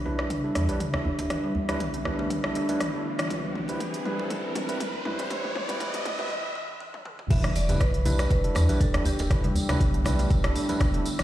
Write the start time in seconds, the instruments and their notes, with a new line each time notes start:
Already playing: sub bass B1, analog synth pad D4 G4 E5, riser
0.05 tine electric piano G3 D4 E4 B4, kalimba E4, djembe tone
0.19 cross-stick, djembe slap, djembe tone
0.30 sub bass B1, kalimba D4, kick, closed hi-hat, mid tom
0.44 tine electric piano G3 D4 E4 A4
0.55 sub bass E2, kalimba E3, cross-stick, closed hi-hat, djembe slap, djembe tone
0.69 sub bass B1, tine electric piano G3 D4 E4 B4, closed hi-hat
0.80 kick, closed hi-hat, mid tom
0.93 tine electric piano G3 D4 E4 A4, cross-stick, djembe bass
1.05 sub bass G1, kalimba D4, djembe bass
1.19 sub bass E1, closed hi-hat, djembe slap
1.30 tine electric piano G3 D4 E4 B4, kick, cross-stick, closed hi-hat, mid tom
1.44 kalimba G3
1.55 djembe tone, djembe bass
1.69 tine electric piano G3 D4 E4 B4, cross-stick, closed hi-hat, djembe tone
1.80 sub bass B1, kalimba B3, kick, closed hi-hat, mid tom
1.94 kalimba D3, closed hi-hat
2.05 tine electric piano G3 D4 E4 B4, cross-stick, djembe tone, djembe bass
2.19 kalimba A3, djembe slap
2.30 sub bass B1, kalimba D4, kick, closed hi-hat, mid tom
2.44 sub bass B1, tine electric piano G3 D4 E4 A4, kalimba E4, cross-stick
2.55 kalimba D4, closed hi-hat, djembe slap
2.69 tine electric piano G3 D4 E4 B4, kalimba A3, closed hi-hat, djembe slap
2.80 sub bass B1, kalimba B3, kick, cross-stick, closed hi-hat, mid tom
2.94 sub bass E1, kalimba D3, tine electric piano G3 D4 E4 A4
3.19 sub bass E1, kalimba E3, cross-stick, closed hi-hat
3.30 sub bass C2, kalimba E3, tine electric piano G3 C4 E4 B4, analog synth pad C4 B4, kick, closed hi-hat, mid tom
3.55 mid tom, djembe tone
3.68 tine electric piano G3 C4 E4 B4, closed hi-hat, djembe tone
3.80 sub bass G1, kick, closed hi-hat, mid tom
3.94 closed hi-hat
4.05 tine electric piano G3 C4 E4 B4, kalimba E4, mid tom, djembe tone
4.19 djembe slap, djembe tone
4.30 sub bass G1, kalimba E3, tine electric piano G3 C4 E4 B4, kick, closed hi-hat, mid tom
4.55 sub bass G1, closed hi-hat, mid tom, djembe slap, djembe tone
4.69 sub bass G1, tine electric piano G3 C4 E4 B4, closed hi-hat
4.80 kick, closed hi-hat, mid tom
4.93 djembe bass
5.05 sub bass E2, tine electric piano G3 C4 E4 B4, kalimba E4, mid tom, djembe bass
5.19 sub bass C2, closed hi-hat, djembe slap
5.30 kalimba E3, tine electric piano G3 C4 E4 B4, kick, closed hi-hat, mid tom
5.44 mid tom
5.55 mid tom, djembe tone, djembe bass
5.69 tine electric piano G3 C4 E4 B4, closed hi-hat, mid tom, djembe tone
5.80 sub bass G1, kalimba E3, tine electric piano G3 C4 E4 B4, kick, closed hi-hat, mid tom
5.94 closed hi-hat, mid tom
6.05 closed hi-hat, mid tom, djembe tone, djembe bass
6.19 tine electric piano G3 C4 E4 B4, mid tom, djembe slap
6.31 kalimba E3
6.55 kalimba E3
6.80 kalimba E3
6.94 high tom
7.05 kalimba E3, mid tom
7.19 mid tom
7.30 sub bass E1, kalimba E3, tine electric piano G3 D4 E4 B4, analog synth pad D5 G5 E6, marimba E5, kick, closed hi-hat, crash, tambourine, impact
7.44 cross-stick, closed hi-hat, muted conga, low conga
7.56 marimba D5, open hi-hat, tambourine, djembe tone
7.68 tine electric piano G3 D4 E4 B4, closed hi-hat, tambourine, high conga, djembe tone, low conga
7.80 sub bass B1, marimba B4, kick, cross-stick, closed hi-hat
7.94 closed hi-hat
8.05 tine electric piano G3 D4 E4 B4, kalimba E4, open hi-hat, tambourine, muted conga, djembe tone, high conga, low conga
8.19 cross-stick, closed hi-hat, tambourine, djembe slap, djembe tone
8.30 sub bass B1, kalimba D4, marimba B4, kick, closed hi-hat, muted conga, high conga
8.44 tine electric piano G3 D4 E4 A4, closed hi-hat
8.55 sub bass E2, kalimba E3, cross-stick, open hi-hat, tambourine, djembe slap, muted conga, djembe tone
8.69 sub bass B1, tine electric piano G3 D4 E4 B4, closed hi-hat, tambourine, high conga
8.80 marimba A4, kick, closed hi-hat, tambourine
8.94 tine electric piano G3 D4 E4 A4, cross-stick, closed hi-hat, muted conga, high conga, djembe bass
9.05 sub bass G1, kalimba D4, marimba G4, open hi-hat, tambourine, djembe bass
9.19 sub bass E1, closed hi-hat, tambourine, muted conga, djembe slap
9.31 tine electric piano G3 D4 E4 B4, kick, cross-stick, closed hi-hat
9.44 kalimba G3, closed hi-hat, muted conga, low conga
9.55 open hi-hat, tambourine, djembe tone, djembe bass
9.69 tine electric piano G3 D4 E4 B4, cross-stick, closed hi-hat, tambourine, high conga, djembe tone, low conga
9.80 sub bass B1, kalimba B3, kick, closed hi-hat, tambourine
9.94 kalimba D3, closed hi-hat, high conga
10.05 tine electric piano G3 D4 E4 B4, cross-stick, open hi-hat, tambourine, muted conga, djembe tone, high conga, low conga, djembe bass
10.19 kalimba A3, closed hi-hat, tambourine, djembe slap, djembe tone
10.30 sub bass B1, kalimba D4, kick, closed hi-hat, tambourine, muted conga
10.44 sub bass B1, tine electric piano G3 D4 E4 A4, kalimba E4, cross-stick, closed hi-hat, high conga
10.55 kalimba D4, open hi-hat, tambourine, muted conga, djembe slap
10.69 tine electric piano G3 D4 E4 B4, kalimba A3, closed hi-hat, tambourine, djembe slap, high conga
10.80 sub bass B1, kalimba B3, kick, cross-stick, closed hi-hat, tambourine
10.94 sub bass E1, kalimba D3, tine electric piano G3 D4 E4 A4, closed hi-hat, muted conga
11.06 open hi-hat, tambourine
11.19 sub bass E1, kalimba E3, cross-stick, closed hi-hat, tambourine, muted conga